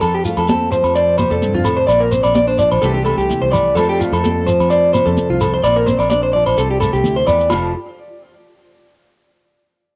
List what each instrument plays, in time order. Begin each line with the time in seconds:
0.01 fingered electric bass F2, nylon-string guitar F2, clean electric guitar A4, muted conga, low agogo, shekere
0.14 clean electric guitar G4
0.25 nylon-string guitar A3, clean electric guitar F4, shekere
0.37 fingered electric bass F2, clean electric guitar A4, low agogo, shekere
0.48 nylon-string guitar C4, clean electric guitar A4, muted conga, high conga, shekere
0.72 nylon-string guitar F3, clean electric guitar C5, shekere
0.84 fingered electric bass F2, low agogo, shekere
0.95 nylon-string guitar C5, clean electric guitar D5, muted conga, shekere
1.18 nylon-string guitar C3, clean electric guitar C5, muted conga, high conga, low agogo, shekere
1.31 fingered electric bass F2, clean electric guitar A4, shekere
1.42 nylon-string guitar G2, high conga, shekere
1.54 fingered electric bass F2, clean electric guitar F4
1.64 nylon-string guitar A2, clean electric guitar A4, low agogo, shekere
1.77 clean electric guitar C5
1.87 fingered electric bass A#1, nylon-string guitar A#2, clean electric guitar D5, muted conga, low agogo, shekere
2.00 clean electric guitar A#4
2.11 nylon-string guitar C4, clean electric guitar C5, high conga, shekere
2.23 fingered electric bass A#1, clean electric guitar D5, low agogo, shekere
2.35 nylon-string guitar C4, clean electric guitar D5, muted conga, high conga, shekere
2.47 nylon-string guitar D4, clean electric guitar C5
2.58 nylon-string guitar F3, clean electric guitar D5, shekere
2.72 fingered electric bass A#1, clean electric guitar C5, low agogo, shekere
2.82 fingered electric bass C2, nylon-string guitar C3 E3 A3 E4 G4, clean electric guitar A4, muted conga, shekere
2.94 clean electric guitar G4
3.05 nylon-string guitar A3, clean electric guitar A4, muted conga, low agogo
3.18 fingered electric bass C2, clean electric guitar G4, shekere
3.29 nylon-string guitar E4, high conga, low conga, shekere
3.42 fingered electric bass C2, clean electric guitar C5
3.52 nylon-string guitar E3, clean electric guitar D5, low conga, low agogo, shekere
3.75 fingered electric bass F2, nylon-string guitar F2 F3 A3 C4, clean electric guitar A4, muted conga, low agogo, shekere
3.79 nylon-string guitar A4
3.89 clean electric guitar G4
3.99 nylon-string guitar A3, clean electric guitar F4, shekere
4.12 fingered electric bass F2, clean electric guitar A4, low agogo, shekere
4.24 nylon-string guitar C4, clean electric guitar A4, muted conga, high conga, shekere
4.47 nylon-string guitar F3, clean electric guitar C5, shekere
4.60 fingered electric bass F2, low agogo, shekere
4.70 nylon-string guitar C5, clean electric guitar D5, muted conga, shekere
4.93 nylon-string guitar C3, clean electric guitar C5, muted conga, high conga, low agogo, shekere
5.06 fingered electric bass F2, clean electric guitar A4, shekere
5.17 high conga, shekere
5.30 fingered electric bass C2, clean electric guitar F4
5.41 nylon-string guitar C4, clean electric guitar A4, low agogo, shekere
5.54 clean electric guitar C5
5.64 fingered electric bass A#1, nylon-string guitar A#2, clean electric guitar D5, muted conga, low agogo, shekere
5.76 clean electric guitar A#4
5.86 nylon-string guitar C4, clean electric guitar C5, high conga, shekere
5.99 fingered electric bass A#1, clean electric guitar D5, low agogo, shekere
6.10 nylon-string guitar D4, clean electric guitar D5, muted conga, high conga, shekere
6.23 clean electric guitar C5
6.33 nylon-string guitar F3, clean electric guitar D5
6.46 fingered electric bass A#1, clean electric guitar C5, low agogo, shekere
6.57 fingered electric bass C2, nylon-string guitar C3, clean electric guitar A4, muted conga, shekere
6.70 clean electric guitar G4
6.80 nylon-string guitar A3, clean electric guitar A4, low agogo, shekere
6.93 fingered electric bass C2, clean electric guitar G4, shekere
7.04 fingered electric bass D2, nylon-string guitar E4, high conga, low conga, shekere
7.16 clean electric guitar C5
7.27 fingered electric bass E2, nylon-string guitar E3, clean electric guitar D5, low conga, low agogo, shekere
7.40 shekere
7.50 fingered electric bass F1, nylon-string guitar F2 F3 A3, clean electric guitar F4, muted conga, low agogo, shekere
7.54 nylon-string guitar C4 A4